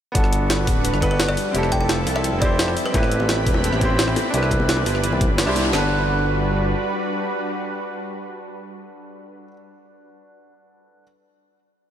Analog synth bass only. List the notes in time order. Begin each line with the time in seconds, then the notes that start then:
0.15 G1
0.41 G1
0.67 D1
0.94 G1
1.11 G1
1.28 G1
1.54 F1
1.81 F1
2.07 C2
2.33 F1
2.50 F1
2.68 F1
2.94 A1
3.20 A1
3.47 E1
3.73 A1
3.90 A1
4.08 A1
4.34 C2
4.60 C2
4.86 G1
5.12 C2
5.30 G1
5.47 C2
5.74 G1